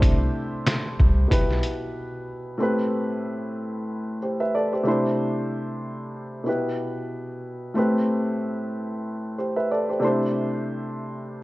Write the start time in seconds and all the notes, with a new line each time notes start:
Already playing: C2 C3 A3 D4 E4 C5
0.02 kick, closed hi-hat
0.67 snare, closed hi-hat
1.00 C2, kick
1.28 B1 B2 B3 E4 G4, kick, closed hi-hat
1.33 B4
1.51 snare
1.63 closed hi-hat
2.58 A2 A3 C4 G4
2.63 B4
4.22 G4 C5
4.40 B4 E5
4.55 A4 D5
4.73 G4 C5
4.83 C3 A3 D4 E4
4.88 C5
6.44 B2 B3 E4 G4
6.49 B4
7.74 A2 A3 C4 G4
7.79 B4
9.38 G4 C5
9.56 B4 E5
9.71 A4 D5
9.89 G4 C5
10.00 C3 A3 D4 E4
10.04 C5